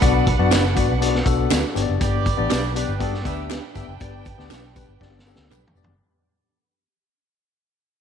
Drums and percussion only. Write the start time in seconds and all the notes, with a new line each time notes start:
0.02 kick, closed hi-hat, tambourine
0.27 kick, closed hi-hat
0.52 snare, clap, closed hi-hat, tambourine
0.77 kick, closed hi-hat, tambourine
1.02 closed hi-hat, tambourine
1.15 snare
1.26 kick, closed hi-hat, tambourine
1.51 snare, clap, closed hi-hat, tambourine
1.76 closed hi-hat, tambourine
2.01 kick, closed hi-hat, tambourine
2.26 kick, closed hi-hat, tambourine
2.50 snare, clap, closed hi-hat, tambourine
2.76 closed hi-hat, tambourine
3.00 kick, closed hi-hat
3.14 snare
3.25 kick, closed hi-hat, tambourine
3.50 snare, clap, closed hi-hat, tambourine
3.75 kick, closed hi-hat, tambourine
4.00 kick, closed hi-hat, tambourine
4.25 kick, closed hi-hat, tambourine
4.39 snare
4.51 snare, clap, closed hi-hat, tambourine
4.76 kick, closed hi-hat, tambourine
5.01 kick, snare
5.19 snare
5.27 tambourine
5.36 snare
5.51 clap, mid tom, tambourine
5.67 floor tom
5.77 tambourine
5.84 floor tom